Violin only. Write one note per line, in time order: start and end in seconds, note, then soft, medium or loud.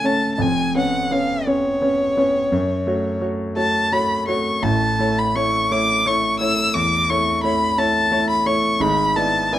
0.06 0.34 A5 medium
0.35 0.43 A5 medium
0.42 0.76 G#5 medium
0.77 1.13 F#5 medium
1.12 1.49 F5 medium
1.47 3.22 C#5 medium
3.57 3.94 A5 medium
3.92 4.27 B5 medium
4.28 4.64 C#6 medium
4.63 5.20 A5 medium
5.19 5.37 B5 medium
5.36 5.73 C#6 medium
5.72 6.09 D6 medium
6.07 6.39 C#6 medium
6.39 6.75 E6 medium
6.74 7.11 D6 medium
7.10 7.43 C#6 medium
7.43 7.80 B5 medium
7.79 8.29 A5 medium
8.30 8.48 B5 medium
8.47 8.83 C#6 medium
8.81 9.18 B5 medium
9.17 9.54 A5 medium
9.53 9.59 G#5 medium